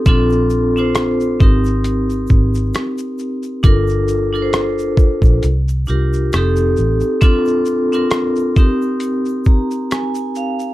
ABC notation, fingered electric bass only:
X:1
M:4/4
L:1/16
Q:"Swing 16ths" 1/4=67
K:Cdor
V:1 name="Fingered electric bass" clef=bass
B,,,6 _A,,,4 A,,,2 z4 | G,,,6- G,,, B,,, C,,2 C,,2 F,,,2 A,,, z | z16 |]